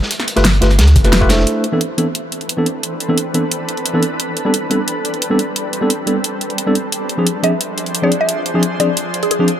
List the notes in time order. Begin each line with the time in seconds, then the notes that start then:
0.02 snare
0.11 closed hi-hat
0.19 snare, closed hi-hat
0.28 closed hi-hat
0.36 G1 A3 F4 G4 B4, snare, closed hi-hat
0.44 snare, closed hi-hat
0.53 closed hi-hat
0.61 G1 A3 F4 G4 B4, snare, closed hi-hat
0.71 snare, closed hi-hat
0.79 D2, snare, closed hi-hat
0.88 closed hi-hat
0.96 F1, kick, closed hi-hat
1.04 A3 F4 G4 B4, snare, closed hi-hat
1.13 snare, closed hi-hat
1.21 A3 F4 G4 B4, kick
1.29 A3 D4 E4 C5, snare, closed hi-hat
1.39 snare
1.47 E3 C4 D4 A4 B4, closed hi-hat
1.64 closed hi-hat
1.72 E3 B3 C4 D4 A4
1.81 closed hi-hat
1.97 E3 B3 C4 D4 A4, closed hi-hat
2.15 closed hi-hat
2.32 closed hi-hat
2.41 closed hi-hat
2.49 closed hi-hat
2.57 E3 B3 C4 D4 A4
2.66 closed hi-hat
2.83 closed hi-hat
3.00 closed hi-hat
3.08 E3 B3 C4 D4 A4
3.18 closed hi-hat
3.34 E3 B3 C4 D4 A4, closed hi-hat
3.52 closed hi-hat
3.69 closed hi-hat
3.77 closed hi-hat
3.86 closed hi-hat
3.93 E3 B3 C4 D4 A4
4.03 closed hi-hat
4.19 G3 C4, closed hi-hat
4.37 closed hi-hat
4.45 G3 B3 C4 D4 A4
4.54 closed hi-hat
4.70 G3 B3 C4 D4 A4, closed hi-hat
4.88 closed hi-hat
5.05 closed hi-hat
5.14 closed hi-hat
5.22 closed hi-hat
5.30 G3 B3 C4 D4 A4
5.39 closed hi-hat
5.56 closed hi-hat
5.73 closed hi-hat
5.81 G3 B3 C4 D4 A4
5.90 closed hi-hat
6.06 G3 B3 C4 D4 A4, closed hi-hat
6.24 closed hi-hat
6.41 closed hi-hat
6.50 closed hi-hat
6.58 closed hi-hat
6.66 G3 B3 C4 D4 A4
6.75 closed hi-hat
6.92 F3 D4 G#4 C5, closed hi-hat
7.09 closed hi-hat
7.18 F3 C4 D4 G#4
7.27 closed hi-hat
7.43 F3 C4 D4 G#4 E5, closed hi-hat
7.61 closed hi-hat
7.78 closed hi-hat
7.86 closed hi-hat
7.95 closed hi-hat
8.02 F3 C4 D4 G#4 D5
8.12 closed hi-hat
8.21 E5
8.29 closed hi-hat
8.46 closed hi-hat
8.54 F3 C4 D4 G#4
8.63 closed hi-hat
8.79 F3 C4 D4 G#4 D5, closed hi-hat
8.97 closed hi-hat
9.14 closed hi-hat
9.23 G#4, closed hi-hat
9.31 G#4, closed hi-hat
9.39 F3 C4 D4 G#4
9.48 G3 F4 A4 B4, closed hi-hat